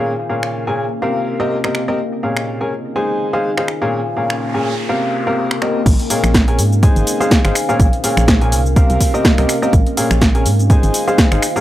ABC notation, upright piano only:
X:1
M:4/4
L:1/16
Q:"Swing 16ths" 1/4=124
K:Bbdor
V:1 name="Upright piano"
z2 [B,,DABf]3 [B,,DABa] z2 [C,CGBf]3 [C,CGBe] z [C,CGBe] z [CGBe] | z2 [B,,DABf]3 [DABa] z2 [A,EAca]3 [A,EAcf] z [EAcf] z [B,,DABf] | z2 [B,,DABf]3 [B,,DABa] z2 [C,CGBf]3 [C,CGBf]2 z [CGBe] z | z2 [B,,DABf]3 [DABa] z2 [A,EAca]3 [A,EAcf] z [EAcf] z [B,,DABf] |
z2 [B,,DABf]3 [B,,DABa] z2 [C,CGBf]3 [C,CGBe] z [C,CGBe] z [CGBe] | z2 [B,,DABf]3 [DABa] z2 [A,EAca]3 [A,EAcf] z [EAcf] z [B,,DABf] |]